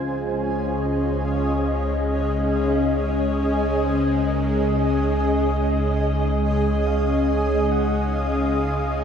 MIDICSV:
0, 0, Header, 1, 5, 480
1, 0, Start_track
1, 0, Tempo, 860832
1, 1181, Time_signature, 4, 2, 24, 8
1, 5042, End_track
2, 0, Start_track
2, 0, Title_t, "Soft synth lead"
2, 0, Program_c, 0, 80
2, 0, Note_on_c, 0, 72, 104
2, 224, Note_on_c, 0, 73, 103
2, 232, Note_off_c, 0, 72, 0
2, 457, Note_on_c, 0, 75, 107
2, 466, Note_off_c, 0, 73, 0
2, 697, Note_on_c, 0, 77, 106
2, 705, Note_off_c, 0, 75, 0
2, 939, Note_on_c, 0, 75, 103
2, 947, Note_off_c, 0, 77, 0
2, 1180, Note_off_c, 0, 75, 0
2, 1185, Note_on_c, 0, 75, 99
2, 1426, Note_on_c, 0, 77, 105
2, 1434, Note_off_c, 0, 75, 0
2, 1656, Note_on_c, 0, 73, 108
2, 1664, Note_off_c, 0, 77, 0
2, 2140, Note_on_c, 0, 72, 96
2, 2149, Note_off_c, 0, 73, 0
2, 2386, Note_on_c, 0, 70, 80
2, 2395, Note_off_c, 0, 72, 0
2, 2628, Note_on_c, 0, 68, 77
2, 2637, Note_off_c, 0, 70, 0
2, 2981, Note_off_c, 0, 68, 0
2, 3591, Note_on_c, 0, 80, 91
2, 3829, Note_on_c, 0, 77, 81
2, 3837, Note_off_c, 0, 80, 0
2, 4061, Note_on_c, 0, 80, 92
2, 4069, Note_off_c, 0, 77, 0
2, 4302, Note_on_c, 0, 78, 86
2, 4310, Note_off_c, 0, 80, 0
2, 4543, Note_on_c, 0, 77, 94
2, 4551, Note_off_c, 0, 78, 0
2, 5016, Note_on_c, 0, 75, 106
2, 5025, Note_off_c, 0, 77, 0
2, 5042, Note_off_c, 0, 75, 0
2, 5042, End_track
3, 0, Start_track
3, 0, Title_t, "Ambient pad"
3, 0, Program_c, 1, 92
3, 0, Note_on_c, 1, 61, 69
3, 0, Note_on_c, 1, 65, 79
3, 0, Note_on_c, 1, 68, 63
3, 0, Note_on_c, 1, 72, 81
3, 0, Note_on_c, 1, 75, 78
3, 0, Note_on_c, 1, 80, 62
3, 159, Note_off_c, 1, 72, 0
3, 350, Note_off_c, 1, 80, 0
3, 388, Note_off_c, 1, 65, 0
3, 5042, Note_off_c, 1, 61, 0
3, 5042, Note_off_c, 1, 68, 0
3, 5042, Note_off_c, 1, 75, 0
3, 5042, End_track
4, 0, Start_track
4, 0, Title_t, "Synth drone"
4, 0, Program_c, 2, 95
4, 0, Note_on_c, 2, 49, 74
4, 0, Note_on_c, 2, 56, 77
4, 5042, Note_off_c, 2, 49, 0
4, 5042, Note_off_c, 2, 56, 0
4, 5042, End_track
5, 0, Start_track
5, 0, Title_t, "Synth drone"
5, 0, Program_c, 3, 95
5, 0, Note_on_c, 3, 37, 79
5, 5042, Note_off_c, 3, 37, 0
5, 5042, End_track
0, 0, End_of_file